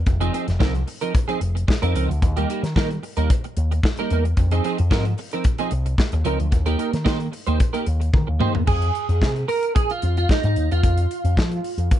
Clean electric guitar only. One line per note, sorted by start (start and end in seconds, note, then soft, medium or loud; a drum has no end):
0.07 muted clean electric guitar stroke soft
0.21 0.32 F3 medium
0.21 0.32 C4 medium
0.21 0.33 D#4 medium
0.21 0.33 G#4 medium
0.33 0.50 F3 medium
0.33 0.47 C4 medium
0.33 0.46 D#4 medium
0.33 0.46 G#4 medium
0.47 muted clean electric guitar stroke soft
0.59 0.80 F3 medium
0.59 0.74 C4 medium
0.59 0.74 D#4 medium
0.59 0.74 A#4 medium
0.75 muted clean electric guitar stroke soft
0.87 muted clean electric guitar stroke soft
1.01 1.12 F3 medium
1.01 1.13 C4 medium
1.01 1.13 D#4 medium
1.01 1.14 A#4 medium
1.14 muted clean electric guitar stroke soft
1.28 1.39 F3 medium
1.28 1.40 C4 medium
1.28 1.40 D#4 medium
1.28 1.40 G#4 medium
1.40 muted clean electric guitar stroke soft
1.55 muted clean electric guitar stroke soft
1.68 muted clean electric guitar stroke soft
1.82 1.93 F3 medium
1.82 1.94 C4 medium
1.82 1.94 D#4 medium
1.82 1.95 A#4 medium
1.95 2.11 F3 medium
1.95 2.09 C4 medium
1.95 2.08 D#4 medium
1.95 2.09 A#4 medium
2.09 muted clean electric guitar stroke medium
2.22 muted clean electric guitar stroke soft
2.37 2.48 G3 medium
2.37 2.48 A#3 medium
2.37 2.49 D#4 medium
2.37 2.49 G4 medium
2.49 2.65 G3 medium
2.49 2.63 A#3 medium
2.49 2.62 D#4 medium
2.49 2.61 G4 medium
2.63 muted clean electric guitar stroke soft
2.76 2.96 G3 medium
2.76 2.90 A#3 medium
2.76 2.90 D#4 medium
2.76 2.90 A#4 medium
2.90 muted clean electric guitar stroke soft
3.03 muted clean electric guitar stroke soft
3.17 3.29 G3 medium
3.17 3.30 A#3 medium
3.17 3.30 D#4 medium
3.17 3.31 A#4 medium
3.44 muted clean electric guitar stroke soft
3.72 muted clean electric guitar stroke soft
3.85 muted clean electric guitar stroke soft
3.99 4.10 G3 medium
3.99 4.11 A#3 medium
3.99 4.11 D#4 medium
3.99 4.12 A#4 medium
4.12 4.27 G3 medium
4.12 4.25 A#3 medium
4.12 4.25 D#4 medium
4.12 4.25 A#4 medium
4.25 muted clean electric guitar stroke medium
4.38 muted clean electric guitar stroke soft
4.52 4.62 F3 medium
4.52 4.63 C4 medium
4.52 4.64 D#4 medium
4.52 4.64 G#4 medium
4.64 4.80 F3 medium
4.64 4.79 C4 medium
4.64 4.78 D#4 medium
4.64 4.78 G#4 medium
4.79 muted clean electric guitar stroke medium
4.91 5.11 F3 medium
4.91 5.05 C4 medium
4.91 5.05 D#4 medium
4.91 5.05 A#4 loud
5.05 muted clean electric guitar stroke soft
5.19 muted clean electric guitar stroke soft
5.33 5.44 F3 medium
5.33 5.44 C4 medium
5.33 5.44 D#4 medium
5.33 5.45 A#4 medium
5.45 muted clean electric guitar stroke soft
5.59 5.71 F3 medium
5.59 5.71 C4 medium
5.59 5.71 D#4 medium
5.59 5.72 G#4 medium
5.72 muted clean electric guitar stroke soft
5.86 muted clean electric guitar stroke soft
5.98 muted clean electric guitar stroke soft
6.13 muted clean electric guitar stroke medium
6.25 6.46 F3 medium
6.25 6.39 C4 medium
6.25 6.39 D#4 medium
6.25 6.39 A#4 medium
6.40 muted clean electric guitar stroke soft
6.52 muted clean electric guitar stroke medium
6.66 6.77 A#3 medium
6.66 6.77 D#4 medium
6.66 6.78 G4 medium
6.66 6.78 A#4 medium
6.78 6.95 A#3 medium
6.78 6.91 D#4 medium
6.78 6.91 G4 medium
6.78 6.91 A#4 medium
6.92 muted clean electric guitar stroke soft
7.05 7.26 A#3 medium
7.05 7.19 D#4 medium
7.05 7.19 G4 medium
7.05 7.19 C5 medium
7.19 muted clean electric guitar stroke soft
7.32 muted clean electric guitar stroke soft
7.47 7.58 A#3 medium
7.47 7.59 D#4 medium
7.47 7.59 G4 medium
7.47 7.60 C5 medium
7.60 muted clean electric guitar stroke soft
7.73 7.85 A#3 medium
7.73 7.86 D#4 medium
7.73 7.86 G4 medium
7.73 7.86 A#4 medium
7.86 muted clean electric guitar stroke soft
8.00 muted clean electric guitar stroke soft
8.27 muted clean electric guitar stroke soft
8.40 8.61 A#3 medium
8.40 8.54 D#4 medium
8.40 8.53 G4 medium
8.40 8.54 C5 medium
8.54 muted clean electric guitar stroke soft
8.67 9.48 G#4 medium
9.48 9.75 A#4 medium
9.75 9.90 G#4 medium
9.91 10.17 F4 medium
10.18 10.30 F4 medium
10.31 10.44 D#4 medium
10.45 10.72 D#4 medium
10.72 12.00 F4 medium